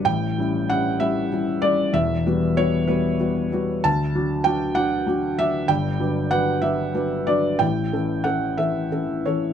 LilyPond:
\new Staff \with { instrumentName = "Felt piano" } { \time 6/8 \key a \mixolydian \tempo 4. = 64 << { g''4 fis''8 e''4 d''8 | e''4 cis''8 b'4. | a''4 g''8 fis''4 e''8 | g''4 fis''8 e''4 d''8 |
g''4 fis''8 e''4 cis''8 | } \\ { <a,, a,>8 <g cis' e'>8 <g cis' e'>8 <g cis' e'>8 <g cis' e'>8 <g cis' e'>8 | <e,, e,>8 <g b fis'>8 <g b fis'>8 <g b fis'>8 <g b fis'>8 <g b fis'>8 | d,8 <fis d' fis'>8 <fis d' fis'>8 <fis d' fis'>8 <fis d' fis'>8 <fis d' fis'>8 | <g,, g,>8 <fis d' b'>8 <fis d' b'>8 <fis d' b'>8 <fis d' b'>8 <fis d' b'>8 |
<a,, a,>8 <e cis' a'>8 <e cis' a'>8 <e cis' a'>8 <e cis' a'>8 <e cis' a'>8 | } >> }